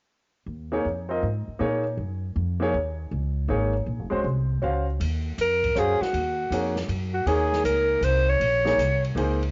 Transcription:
0.46 0.83 D#2 medium
0.72 0.84 A#3 medium
0.72 0.84 D#4 soft
0.72 0.84 G#4 soft
0.72 0.84 C#5 medium
0.85 1.22 F2 medium
1.09 1.21 C4 soft
1.09 1.21 F4 soft
1.09 1.22 A#4 soft
1.09 1.22 D#5 soft
1.23 1.46 G#2 medium
1.48 muted upright bass stroke soft
1.59 1.97 A#2 medium
1.59 1.83 A#3 medium
1.59 1.83 D#4 medium
1.59 1.83 G#4 soft
1.59 1.83 C#5 medium
1.97 2.35 F#2 medium
2.36 2.73 F2 medium
2.60 2.72 A#3 medium
2.60 2.73 D#4 soft
2.60 2.73 G#4 medium
2.60 2.73 C#5 medium
2.74 3.10 D#2 medium
3.11 3.48 C#2 medium
3.48 3.86 G#1 medium
3.48 3.72 A#3 soft
3.48 3.72 D#4 soft
3.48 3.72 G#4 soft
3.48 3.72 C#5 medium
3.86 3.99 A#1 medium
3.99 4.11 F1 soft
4.10 4.24 C#1 medium
4.10 4.23 G#3 medium
4.10 4.23 C#4 soft
4.10 4.23 F#4 soft
4.10 4.24 C5 medium
4.24 4.61 C2 medium
4.62 4.99 C#2 medium
4.62 4.85 C#4 soft
4.62 4.85 F#4 soft
4.62 4.86 C5 soft
4.62 4.86 F5 medium
5.00 5.37 D#2 medium
5.00 ride medium
5.38 5.75 F2 medium
5.38 5.80 A#4 medium
5.38 hi-hat pedal soft
5.38 ride medium
5.64 kick soft
5.64 ride soft
5.75 5.99 F#2 medium
5.75 5.98 C#4 soft
5.75 5.99 F#4 soft
5.75 6.03 G#4 medium
5.75 5.99 C5 soft
5.75 5.99 F5 medium
5.75 hi-hat pedal soft
6.00 6.77 F#4 medium
6.00 muted upright bass stroke soft
6.00 snare soft
6.13 6.50 D#2 medium
6.13 ride soft
6.50 6.88 F2 medium
6.50 6.74 A#3 soft
6.50 6.74 D#4 soft
6.50 6.75 G#4 soft
6.50 6.75 C#5 soft
6.50 hi-hat pedal soft
6.50 ride medium
6.76 snare soft
6.88 7.25 F#2 medium
6.88 ride soft
7.14 7.29 F#4 medium
7.26 7.63 D#2 medium
7.26 8.32 A#3 soft
7.26 8.33 D#4 soft
7.26 7.65 G#4 medium
7.26 8.33 G#4 soft
7.26 8.33 C#5 medium
7.26 ride soft
7.53 snare soft
7.64 8.00 C#2 medium
7.64 8.06 A#4 medium
7.64 hi-hat pedal soft
7.64 ride medium
8.01 8.38 C2 medium
8.01 8.31 C5 medium
8.01 hi-hat pedal soft
8.01 ride medium
8.29 9.04 C#5 medium
8.40 8.77 A#1 medium
8.40 ride medium
8.65 8.76 A#3 medium
8.65 8.77 D#4 soft
8.65 8.77 G#4 medium
8.65 8.77 C#5 medium
8.65 snare soft
8.78 9.14 C2 medium
8.78 hi-hat pedal soft
8.78 ride soft
9.05 ride soft
9.15 9.51 C#2 medium
9.15 9.38 A#3 medium
9.15 9.38 D#4 soft
9.15 9.39 G#4 soft
9.15 9.39 C5 medium
9.15 ride soft
9.43 ride soft

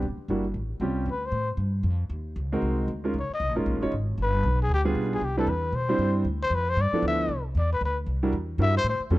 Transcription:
0.02 0.17 E1 medium
0.18 muted upright bass stroke soft
0.28 0.54 G1 medium
0.28 0.43 G3 medium
0.28 0.44 A#3 medium
0.28 0.43 D4 medium
0.28 0.44 E4 soft
0.28 0.44 F#4 medium
0.54 0.79 A1 medium
0.80 1.05 C2 medium
0.80 1.07 G3 medium
0.80 1.07 C4 medium
0.80 1.07 C#4 medium
0.80 1.07 F4 medium
0.80 1.07 G4 medium
1.06 1.31 D2 medium
1.11 1.27 B4 medium
1.26 1.50 C5 medium
1.32 1.57 A2 medium
1.57 1.83 G2 medium
1.83 2.09 F2 medium
2.10 2.35 D#2 medium
2.36 2.61 C#2 medium
2.52 2.87 G#3 medium
2.52 2.87 C4 medium
2.52 2.87 D#4 medium
2.52 2.87 F#4 medium
2.52 2.87 A#4 medium
2.62 2.87 C2 medium
2.88 3.13 D2 medium
3.04 3.13 G#3 medium
3.04 3.14 C#4 medium
3.04 3.14 D#4 medium
3.04 3.14 F4 medium
3.04 3.14 A#4 medium
3.14 3.29 C#2 medium
3.19 3.32 C#5 medium
3.29 muted upright bass stroke soft
3.34 3.56 D#5 loud
3.40 3.49 C2 medium
3.49 3.57 A#1 medium
3.56 3.65 G#1 medium
3.56 3.80 G#3 medium
3.56 3.80 C#4 medium
3.56 3.81 D#4 medium
3.56 3.80 F4 medium
3.56 3.81 A#4 medium
3.66 3.75 A#1 medium
3.75 3.82 G#1 medium
3.82 3.91 F1 medium
3.82 3.91 G#3 medium
3.82 3.91 C#4 medium
3.82 3.91 D#4 medium
3.82 3.92 F4 medium
3.82 3.92 C#5 medium
3.92 4.17 G#1 medium
4.18 4.43 G1 medium
4.23 4.59 B4 medium
4.43 4.68 B1 medium
4.62 4.71 G#4 loud
4.69 4.94 D2 medium
4.74 4.82 G4 medium
4.85 5.19 G3 medium
4.85 5.20 B3 medium
4.85 5.20 D4 medium
4.85 5.20 F4 medium
4.85 5.20 G#4 medium
4.95 5.20 B1 medium
5.14 5.26 G#4 medium
5.21 5.46 C2 medium
5.21 5.38 G4 medium
5.37 5.47 G3 medium
5.37 5.47 C4 medium
5.37 5.47 D4 medium
5.37 5.47 E4 medium
5.37 5.51 A4 loud
5.37 5.47 B4 medium
5.47 5.72 E2 medium
5.47 5.76 B4 medium
5.72 5.98 B2 medium
5.72 6.16 C5 loud
5.89 6.23 G3 medium
5.89 6.23 C4 medium
5.89 6.24 D4 medium
5.89 6.24 E4 medium
5.89 6.24 C5 medium
5.99 6.24 G2 medium
6.25 6.50 D2 medium
6.43 6.57 C5 loud
6.50 6.76 F2 medium
6.55 6.71 B4 loud
6.69 6.83 C5 loud
6.76 6.92 G2 medium
6.81 7.06 D5 loud
6.92 7.27 F3 medium
6.92 7.27 B3 medium
6.92 7.28 D4 medium
6.92 7.28 E4 medium
6.92 7.28 A4 medium
6.92 muted upright bass stroke soft
7.02 7.28 D2 medium
7.08 7.44 E5 medium
7.29 7.54 C2 medium
7.55 7.80 E2 medium
7.55 7.71 D5 medium
7.73 7.82 B4 medium
7.81 8.06 D2 medium
7.85 7.98 B4 medium
8.06 8.32 C2 medium
8.23 8.32 G3 medium
8.23 8.32 D4 medium
8.23 8.32 E4 medium
8.23 8.33 F#4 medium
8.23 8.33 A#4 medium
8.32 8.58 E2 medium
8.58 8.83 G2 medium
8.58 8.73 G3 medium
8.58 8.73 D4 medium
8.58 8.73 E4 medium
8.58 8.73 F#4 medium
8.58 8.74 A#4 medium
8.62 8.75 E5 loud
8.77 8.86 C5 loud
8.84 8.99 A2 medium
8.90 9.02 C5 medium
9.00 muted upright bass stroke soft
9.10 9.19 F2 medium
9.10 9.19 G3 medium
9.10 9.19 C4 medium
9.10 9.19 C#4 medium
9.10 9.19 F4 medium
9.10 9.19 A4 medium

